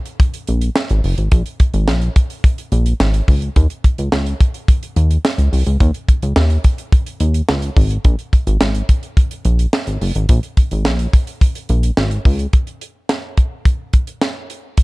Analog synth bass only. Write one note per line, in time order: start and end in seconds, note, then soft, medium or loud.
0.49 0.70 A#1 medium
0.91 1.01 G#1 medium
1.04 1.15 F#1 medium
1.18 1.29 G#1 medium
1.32 1.43 A#1 loud
1.74 1.90 G#1 medium
1.88 2.09 A#1 medium
2.72 2.93 A#1 loud
3.00 3.21 G#1 loud
3.28 3.50 C#2 medium
3.56 3.67 D#2 loud
3.99 4.09 C#2 medium
4.13 4.34 C#2 medium
4.96 5.18 D#2 medium
5.38 5.49 C#2 medium
5.53 5.63 C2 medium
5.67 5.77 C#2 medium
5.81 5.91 D#2 loud
6.23 6.33 C#2 medium
6.36 6.58 D#2 loud
7.20 7.42 D#2 medium
7.49 7.70 C#2 loud
7.77 7.98 G#1 loud
8.05 8.16 A#1 loud
8.47 8.58 G#1 medium
8.61 8.82 G#1 medium
9.45 9.67 A#1 medium
9.87 9.98 G#1 medium
10.01 10.12 F#1 loud
10.16 10.26 G#1 medium
10.29 10.40 A#1 loud
10.72 10.88 G#1 medium
10.86 11.07 A#1 loud
11.70 11.91 A#1 medium
11.97 12.19 G#1 loud
12.25 12.47 C#2 loud